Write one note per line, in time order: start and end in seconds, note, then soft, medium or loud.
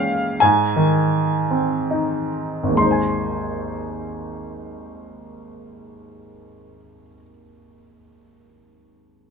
0.00 0.36 A#2 soft
0.00 0.42 F3 soft
0.00 0.38 G#3 soft
0.00 0.39 C#4 soft
0.00 0.42 D#5 soft
0.00 0.42 F5 medium
0.00 0.42 G5 medium
0.40 2.73 G#2 soft
0.40 2.28 G#5 medium
0.76 2.29 D#3 soft
1.50 2.73 C4 soft
1.91 2.74 D#4 soft
2.63 7.01 G#1 soft
2.69 7.06 D#2 soft
2.75 7.12 G#3 soft
2.75 7.15 C6 soft
2.80 7.18 D#4 soft
2.85 7.23 C5 soft
2.91 7.29 G#5 soft